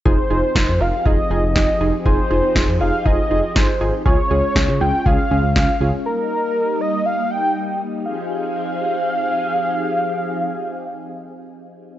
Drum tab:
SD |--o---o-|--o---o-|--o---o-|--------|
BD |o-o-o-o-|o-o-o-o-|o-o-o-o-|--------|

SD |--------|--------|
BD |--------|--------|